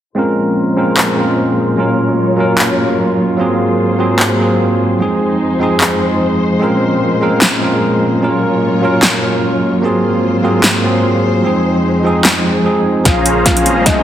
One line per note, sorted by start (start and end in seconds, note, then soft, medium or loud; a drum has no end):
0.15 3.36 A#2 medium
0.15 1.76 F3 medium
0.15 0.74 G#3 medium
0.15 3.36 G#3 medium
0.15 0.75 C4 medium
0.15 0.75 C#4 medium
0.15 0.76 F4 medium
0.15 0.76 A#4 loud
0.15 1.76 C5 medium
0.76 1.14 G#3 medium
0.76 1.15 C4 medium
0.76 1.15 C#4 medium
0.76 1.16 F4 medium
0.76 1.16 A#4 medium
0.97 clap medium
1.16 1.75 G#3 medium
1.16 1.75 C4 medium
1.16 1.76 C#4 medium
1.16 1.76 F4 medium
1.20 1.77 A#4 medium
1.76 2.35 F#3 medium
1.76 4.97 F#3 medium
1.76 2.36 A#3 medium
1.76 2.36 C#4 medium
1.76 4.97 F4 medium
1.76 2.37 F4 medium
1.76 3.37 C#5 medium
1.80 2.37 A#4 medium
2.36 3.36 F#3 medium
2.36 3.36 A#3 medium
2.36 3.37 C#4 medium
2.36 3.37 F4 medium
2.40 3.38 A#4 medium
2.58 clap medium
3.37 4.98 G#2 medium
3.37 3.96 F#3 medium
3.37 3.97 A#3 medium
3.37 4.98 A#3 medium
3.37 3.97 C4 medium
3.37 3.98 F4 medium
3.37 3.98 G#4 loud
3.37 4.98 C5 medium
3.98 4.37 F#3 medium
3.98 4.37 A#3 medium
3.98 4.37 C4 medium
3.98 4.38 F4 medium
3.98 4.38 G#4 medium
4.19 clap medium
4.38 4.97 F#3 medium
4.38 4.97 A#3 medium
4.38 4.98 C4 medium
4.38 4.98 F4 medium
4.38 4.99 G#4 medium
4.98 6.60 F2 medium
4.98 5.57 F3 medium
4.98 8.19 F3 medium
4.98 5.58 G#3 medium
4.98 9.79 G#3 medium
4.98 5.58 C4 medium
4.98 6.59 D#4 medium
4.98 5.59 D#4 medium
4.98 5.59 G#4 medium
4.98 8.19 C5 medium
5.59 6.58 F3 medium
5.59 6.58 G#3 medium
5.59 6.59 C4 medium
5.59 6.59 D#4 medium
5.63 6.60 G#4 loud
5.81 clap medium
6.59 9.80 A#2 medium
6.59 7.18 G#3 medium
6.59 7.19 C4 medium
6.59 7.19 C#4 medium
6.59 7.20 F4 medium
6.63 7.20 A#4 loud
7.21 7.59 G#3 medium
7.21 7.59 C4 medium
7.21 7.60 C#4 medium
7.21 7.60 F4 medium
7.21 7.60 A#4 medium
7.42 snare loud
7.42 clap medium
7.60 8.19 G#3 medium
7.60 8.19 C4 medium
7.60 8.20 C#4 medium
7.60 8.20 F4 medium
7.60 8.21 A#4 medium
8.20 8.79 F#3 medium
8.20 11.41 F#3 medium
8.20 8.80 A#3 medium
8.20 8.80 C#4 medium
8.20 9.82 F4 medium
8.20 8.81 F4 medium
8.20 9.82 C#5 medium
8.24 8.81 A#4 medium
8.81 9.80 F#3 medium
8.81 9.81 A#3 medium
8.81 9.81 C#4 medium
8.81 9.82 F4 medium
8.81 9.82 A#4 loud
9.03 snare loud
9.03 clap medium
9.81 11.43 G#2 medium
9.81 10.40 F#3 medium
9.81 10.41 A#3 medium
9.81 11.43 A#3 medium
9.81 10.41 C4 medium
9.81 11.43 F4 medium
9.81 10.42 F4 medium
9.81 10.42 G#4 loud
9.81 13.02 C5 medium
10.43 10.81 F#3 medium
10.43 10.81 A#3 medium
10.43 10.82 C4 medium
10.43 10.82 F4 medium
10.43 10.82 G#4 medium
10.64 snare loud
10.64 clap medium
10.82 11.41 F#3 medium
10.82 11.42 A#3 medium
10.82 11.42 C4 medium
10.82 11.43 F4 medium
10.82 11.43 G#4 medium
11.42 13.04 F2 medium
11.42 12.02 F3 medium
11.42 13.04 F3 medium
11.42 12.02 G#3 medium
11.42 13.04 G#3 medium
11.42 12.03 C4 medium
11.42 13.04 D#4 medium
11.42 12.03 D#4 medium
11.42 12.03 G#4 medium
12.03 12.62 F3 medium
12.03 12.63 G#3 medium
12.03 12.63 C4 medium
12.03 12.64 D#4 medium
12.03 12.64 G#4 loud
12.25 snare loud
12.25 clap medium
12.64 13.02 F3 medium
12.64 13.03 G#3 medium
12.64 13.03 C4 medium
12.64 13.03 D#4 medium
12.64 13.04 G#4 medium
13.04 14.03 A#1 medium
13.04 13.63 F3 medium
13.04 14.03 G#3 medium
13.04 13.63 A#3 medium
13.04 14.03 A#3 medium
13.04 13.84 C#4 medium
13.04 13.64 C#4 medium
13.04 13.41 F4 medium
13.04 13.84 G#4 medium
13.04 13.84 C5 medium
13.04 13.64 C5 medium
13.04 13.84 F5 medium
13.04 13.41 F5 medium
13.04 13.84 A#5 medium
13.04 kick medium
13.04 snare soft
13.04 closed hi-hat medium
13.04 riser medium
13.08 13.65 G#4 loud
13.26 closed hi-hat medium
13.46 13.81 F4 medium
13.46 13.81 F5 medium
13.46 kick medium
13.46 snare soft
13.46 closed hi-hat medium
13.57 closed hi-hat medium
13.65 14.03 F3 medium
13.65 14.03 A#3 medium
13.65 14.03 C4 medium
13.65 14.03 C#4 medium
13.65 14.03 G#4 medium
13.65 closed hi-hat medium
13.86 14.03 D#4 medium
13.86 14.03 C5 medium
13.86 14.03 D#5 medium
13.86 kick medium
13.86 snare soft
13.86 closed hi-hat medium